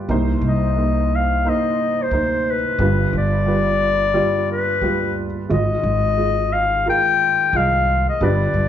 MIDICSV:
0, 0, Header, 1, 4, 480
1, 0, Start_track
1, 0, Key_signature, -3, "minor"
1, 0, Tempo, 676437
1, 70, Time_signature, 4, 2, 24, 8
1, 6163, End_track
2, 0, Start_track
2, 0, Title_t, "Clarinet"
2, 0, Program_c, 0, 71
2, 333, Note_on_c, 0, 75, 74
2, 820, Note_on_c, 0, 77, 78
2, 830, Note_off_c, 0, 75, 0
2, 1058, Note_on_c, 0, 75, 81
2, 1068, Note_off_c, 0, 77, 0
2, 1434, Note_on_c, 0, 72, 81
2, 1445, Note_off_c, 0, 75, 0
2, 1781, Note_on_c, 0, 71, 77
2, 1792, Note_off_c, 0, 72, 0
2, 2245, Note_off_c, 0, 71, 0
2, 2255, Note_on_c, 0, 74, 96
2, 3173, Note_off_c, 0, 74, 0
2, 3202, Note_on_c, 0, 71, 81
2, 3696, Note_off_c, 0, 71, 0
2, 3926, Note_on_c, 0, 75, 98
2, 4632, Note_on_c, 0, 77, 85
2, 4643, Note_off_c, 0, 75, 0
2, 4869, Note_off_c, 0, 77, 0
2, 4894, Note_on_c, 0, 79, 109
2, 5368, Note_on_c, 0, 77, 97
2, 5378, Note_off_c, 0, 79, 0
2, 5717, Note_off_c, 0, 77, 0
2, 5739, Note_on_c, 0, 75, 79
2, 5847, Note_on_c, 0, 74, 85
2, 5858, Note_off_c, 0, 75, 0
2, 6163, Note_off_c, 0, 74, 0
2, 6163, End_track
3, 0, Start_track
3, 0, Title_t, "Grand piano"
3, 0, Program_c, 1, 0
3, 0, Control_c, 1, 64, 127
3, 0, Note_on_c, 1, 55, 66
3, 0, Note_on_c, 1, 65, 63
3, 0, Note_on_c, 1, 67, 66
3, 0, Note_on_c, 1, 71, 80
3, 0, Note_on_c, 1, 74, 57
3, 0, Note_on_c, 1, 77, 53
3, 0, Note_on_c, 1, 79, 49
3, 0, Note_on_c, 1, 83, 51
3, 61, Note_on_c, 1, 58, 76
3, 66, Note_on_c, 1, 48, 64
3, 68, Note_on_c, 1, 36, 65
3, 69, Note_on_c, 1, 63, 69
3, 77, Note_on_c, 1, 72, 83
3, 80, Note_off_c, 1, 55, 0
3, 80, Control_c, 1, 64, 0
3, 81, Note_off_c, 1, 77, 0
3, 82, Note_off_c, 1, 71, 0
3, 83, Note_off_c, 1, 65, 0
3, 83, Note_off_c, 1, 74, 0
3, 84, Note_off_c, 1, 79, 0
3, 85, Note_off_c, 1, 83, 0
3, 86, Note_off_c, 1, 67, 0
3, 184, Control_c, 1, 64, 127
3, 363, Note_off_c, 1, 58, 0
3, 367, Note_off_c, 1, 63, 0
3, 371, Note_off_c, 1, 72, 0
3, 542, Note_on_c, 1, 58, 58
3, 548, Note_on_c, 1, 63, 55
3, 555, Note_on_c, 1, 72, 58
3, 844, Note_off_c, 1, 58, 0
3, 847, Note_off_c, 1, 63, 0
3, 850, Note_off_c, 1, 72, 0
3, 1026, Note_on_c, 1, 58, 61
3, 1032, Note_on_c, 1, 63, 55
3, 1040, Note_on_c, 1, 72, 72
3, 1326, Note_off_c, 1, 58, 0
3, 1329, Note_off_c, 1, 63, 0
3, 1333, Note_off_c, 1, 72, 0
3, 1500, Note_on_c, 1, 58, 60
3, 1508, Note_on_c, 1, 63, 52
3, 1516, Note_on_c, 1, 72, 68
3, 1802, Note_off_c, 1, 58, 0
3, 1806, Note_off_c, 1, 63, 0
3, 1810, Note_off_c, 1, 72, 0
3, 1960, Note_off_c, 1, 48, 0
3, 1961, Note_off_c, 1, 36, 0
3, 1982, Note_on_c, 1, 55, 65
3, 1985, Note_on_c, 1, 43, 58
3, 1986, Note_on_c, 1, 31, 63
3, 1990, Note_on_c, 1, 65, 59
3, 1996, Note_on_c, 1, 71, 76
3, 1999, Control_c, 1, 64, 0
3, 2138, Control_c, 1, 64, 127
3, 2283, Note_off_c, 1, 55, 0
3, 2287, Note_off_c, 1, 65, 0
3, 2290, Note_off_c, 1, 71, 0
3, 2458, Note_on_c, 1, 55, 53
3, 2461, Note_on_c, 1, 65, 59
3, 2471, Note_on_c, 1, 71, 60
3, 2760, Note_off_c, 1, 55, 0
3, 2762, Note_off_c, 1, 65, 0
3, 2767, Note_off_c, 1, 71, 0
3, 2937, Note_on_c, 1, 55, 77
3, 2941, Note_on_c, 1, 65, 69
3, 2952, Note_on_c, 1, 74, 83
3, 3240, Note_off_c, 1, 55, 0
3, 3242, Note_off_c, 1, 65, 0
3, 3247, Note_off_c, 1, 74, 0
3, 3418, Note_on_c, 1, 55, 60
3, 3428, Note_on_c, 1, 65, 62
3, 3433, Note_on_c, 1, 71, 70
3, 3720, Note_off_c, 1, 55, 0
3, 3725, Note_off_c, 1, 65, 0
3, 3727, Note_off_c, 1, 71, 0
3, 3876, Note_off_c, 1, 43, 0
3, 3877, Note_off_c, 1, 31, 0
3, 3894, Note_on_c, 1, 56, 71
3, 3900, Note_on_c, 1, 32, 57
3, 3901, Note_on_c, 1, 65, 64
3, 3902, Note_on_c, 1, 44, 58
3, 3909, Note_on_c, 1, 75, 73
3, 3916, Control_c, 1, 64, 0
3, 4046, Control_c, 1, 64, 127
3, 4197, Note_off_c, 1, 56, 0
3, 4201, Note_off_c, 1, 65, 0
3, 4205, Note_off_c, 1, 75, 0
3, 4376, Note_on_c, 1, 56, 57
3, 4384, Note_on_c, 1, 65, 56
3, 4388, Note_on_c, 1, 75, 68
3, 4678, Note_off_c, 1, 56, 0
3, 4682, Note_off_c, 1, 65, 0
3, 4684, Note_off_c, 1, 75, 0
3, 4864, Note_on_c, 1, 56, 64
3, 4867, Note_on_c, 1, 65, 63
3, 4877, Note_on_c, 1, 70, 75
3, 5162, Note_off_c, 1, 56, 0
3, 5163, Note_off_c, 1, 65, 0
3, 5169, Note_off_c, 1, 70, 0
3, 5343, Note_on_c, 1, 56, 58
3, 5353, Note_on_c, 1, 65, 55
3, 5357, Note_on_c, 1, 75, 72
3, 5642, Note_off_c, 1, 56, 0
3, 5646, Note_off_c, 1, 65, 0
3, 5648, Note_off_c, 1, 75, 0
3, 5794, Note_off_c, 1, 32, 0
3, 5795, Note_off_c, 1, 44, 0
3, 5828, Note_on_c, 1, 55, 72
3, 5831, Note_on_c, 1, 43, 60
3, 5832, Note_on_c, 1, 31, 56
3, 5834, Note_on_c, 1, 65, 58
3, 5835, Control_c, 1, 64, 0
3, 5838, Note_on_c, 1, 71, 78
3, 5943, Control_c, 1, 64, 127
3, 6125, Note_off_c, 1, 55, 0
3, 6127, Note_off_c, 1, 65, 0
3, 6130, Note_off_c, 1, 71, 0
3, 6163, Note_off_c, 1, 31, 0
3, 6163, Note_off_c, 1, 43, 0
3, 6163, End_track
4, 0, Start_track
4, 0, Title_t, "Upright bass"
4, 0, Program_c, 2, 32
4, 62, Note_on_c, 2, 36, 84
4, 250, Note_off_c, 2, 36, 0
4, 294, Note_on_c, 2, 36, 75
4, 1039, Note_off_c, 2, 36, 0
4, 1497, Note_on_c, 2, 38, 79
4, 1871, Note_off_c, 2, 38, 0
4, 1976, Note_on_c, 2, 31, 86
4, 2166, Note_off_c, 2, 31, 0
4, 2221, Note_on_c, 2, 31, 77
4, 2961, Note_off_c, 2, 31, 0
4, 3416, Note_on_c, 2, 38, 75
4, 3789, Note_off_c, 2, 38, 0
4, 3906, Note_on_c, 2, 32, 82
4, 4090, Note_off_c, 2, 32, 0
4, 4139, Note_on_c, 2, 32, 86
4, 4879, Note_off_c, 2, 32, 0
4, 5343, Note_on_c, 2, 36, 82
4, 5713, Note_off_c, 2, 36, 0
4, 5824, Note_on_c, 2, 31, 80
4, 6010, Note_off_c, 2, 31, 0
4, 6058, Note_on_c, 2, 31, 78
4, 6163, Note_off_c, 2, 31, 0
4, 6163, End_track
0, 0, End_of_file